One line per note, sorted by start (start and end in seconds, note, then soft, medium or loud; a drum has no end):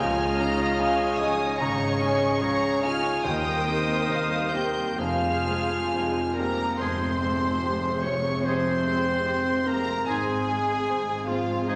0.00 0.39 C#2 medium
0.00 0.66 C#2 loud
0.00 0.67 C#2 loud
0.00 0.39 C#3 medium
0.00 0.18 F3 loud
0.00 1.21 F4 loud
0.00 1.56 G#4 loud
0.00 3.24 C#5 loud
0.00 1.43 D#5 loud
0.00 1.18 F5 loud
0.00 0.39 G#5 loud
0.00 1.18 F6 loud
0.18 0.39 G#3 medium
0.38 0.59 C#4 medium
0.38 0.76 C#4 medium
0.38 0.76 D#4 medium
0.38 0.76 G#4 medium
0.38 0.80 A#5 loud
0.59 0.80 D#4 medium
0.78 1.19 C#2 medium
0.78 1.19 C#3 medium
0.78 1.00 C#4 medium
0.78 1.60 G#5 loud
0.99 1.20 G#3 medium
1.18 1.40 F3 medium
1.18 1.57 C#4 medium
1.18 1.45 D#4 loud
1.18 1.57 D#4 medium
1.18 1.57 G#4 medium
1.18 1.61 D#5 loud
1.18 1.60 D#6 loud
1.38 1.60 G#3 medium
1.58 2.29 G#1 loud
1.58 2.00 C#2 medium
1.58 2.29 G#2 loud
1.58 2.00 C#3 medium
1.58 2.80 C#4 loud
1.58 1.78 C#4 medium
1.58 3.22 G#4 loud
1.58 2.83 C#5 loud
1.58 2.44 D#5 medium
1.58 2.01 A#5 loud
1.58 2.80 C#6 loud
1.79 2.00 D#4 medium
2.00 2.22 C#4 medium
2.00 2.39 C#4 medium
2.00 2.39 D#4 medium
2.00 2.39 G#4 medium
2.00 2.41 G#5 loud
2.20 2.42 G#3 medium
2.40 2.81 C#2 medium
2.40 2.81 C#3 medium
2.40 2.63 F3 medium
2.40 3.23 C#5 medium
2.40 2.82 A#5 loud
2.62 2.83 G#3 medium
2.81 3.21 C#4 medium
2.81 3.05 C#4 medium
2.81 3.21 D#4 medium
2.81 3.24 F4 loud
2.81 3.25 F5 loud
2.81 3.25 G#5 loud
2.81 3.25 F6 loud
2.85 3.22 G#4 medium
3.05 3.25 D#4 medium
3.24 3.65 D#2 medium
3.24 3.95 D#2 loud
3.24 3.65 D#3 medium
3.24 3.45 D#3 medium
3.24 4.51 D#4 loud
3.24 5.00 A#4 medium
3.24 4.96 A#4 medium
3.24 4.95 C5 loud
3.24 4.53 D#5 loud
3.24 4.10 G5 loud
3.24 4.51 D#6 loud
3.46 3.67 G3 medium
3.66 4.05 A#3 medium
3.66 3.88 A#3 medium
3.66 4.06 C4 medium
3.66 4.06 G4 medium
3.88 4.09 C4 medium
4.07 4.51 D#2 medium
4.07 4.51 D#3 medium
4.07 4.32 A#3 medium
4.07 4.54 F5 medium
4.31 4.53 G3 medium
4.52 4.76 D#3 medium
4.52 4.95 A#3 medium
4.52 4.95 C4 medium
4.52 4.98 G4 loud
4.52 4.96 G4 medium
4.52 4.99 D#5 medium
4.52 4.97 G5 loud
4.52 4.98 G6 loud
4.75 4.98 G3 medium
4.97 5.44 F1 medium
4.97 5.76 F1 medium
4.97 5.76 F2 medium
4.97 5.44 F2 medium
4.97 5.21 F3 medium
4.97 6.36 F4 loud
4.97 5.81 G#4 medium
4.97 6.17 G#4 medium
4.97 6.44 C5 medium
4.97 6.37 F5 loud
4.97 6.37 G#5 medium
4.97 6.36 F6 loud
5.22 5.45 G3 medium
5.46 5.69 G#3 medium
5.46 5.88 G#3 medium
5.46 5.88 C4 medium
5.46 5.89 G#4 medium
5.68 5.91 C4 medium
5.92 6.36 F1 medium
5.92 6.37 F2 medium
5.92 6.34 G#3 medium
6.34 6.79 G3 medium
6.34 6.76 A#3 medium
6.34 6.80 A#4 medium
6.34 6.77 A#4 medium
6.34 6.77 A#5 loud
6.38 6.77 G#3 medium
6.38 6.77 C4 medium
6.38 6.77 G4 medium
6.78 10.02 F1 medium
6.78 10.02 F2 medium
6.78 8.40 F2 medium
6.78 10.03 C3 medium
6.78 8.02 C4 medium
6.78 10.03 G#4 medium
6.78 7.11 G#4 medium
6.78 8.04 C5 medium
6.78 7.19 C5 medium
6.78 8.04 C5 loud
6.78 8.04 C6 loud
6.78 tam-tam medium
7.22 7.87 G#3 medium
7.64 8.28 G4 medium
8.02 8.42 C3 medium
8.02 8.43 C#5 loud
8.02 8.47 C#5 medium
8.02 8.44 C#5 medium
8.02 8.44 C#6 loud
8.43 9.09 C3 medium
8.43 9.63 C4 loud
8.43 8.81 C5 medium
8.43 9.66 C5 medium
8.43 9.68 C5 loud
8.43 9.67 C6 loud
8.47 8.75 G#4 medium
8.86 9.50 G#3 medium
9.26 9.91 G4 medium
9.66 9.93 A#3 medium
9.66 10.07 C4 medium
9.66 10.07 A#4 medium
9.66 10.08 A#4 loud
9.66 10.07 A#5 loud
10.05 11.76 G#1 medium
10.05 11.76 G#2 loud
10.05 11.66 G#2 medium
10.05 11.25 G#3 medium
10.05 11.76 C4 medium
10.05 11.76 G#4 medium
10.05 11.29 G#4 loud
10.05 11.27 G#4 loud
10.05 10.45 C5 medium
10.05 11.29 G#5 loud
10.09 10.38 G#4 medium
10.49 11.13 G#3 medium
10.90 11.54 C5 medium
11.26 11.68 F3 medium
11.26 11.66 F4 medium
11.26 11.70 F4 medium
11.26 11.68 F5 loud
11.31 11.76 C4 medium
11.67 11.76 D#3 medium
11.67 11.76 D#4 medium
11.67 11.76 G#4 medium
11.67 11.76 C5 medium
11.67 11.76 D#5 medium
11.72 11.76 D#3 medium